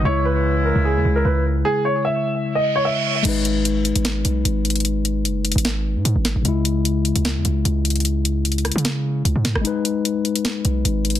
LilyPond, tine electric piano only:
\new Staff \with { instrumentName = "Tine electric piano" } { \time 4/4 \key gis \minor \tempo 4 = 150 <cis gis e'>1~ | <cis gis e'>1 | <gis dis' b'>1~ | <gis dis' b'>1 |
<cis gis e'>1~ | <cis gis e'>1 | <gis dis' b'>1 | }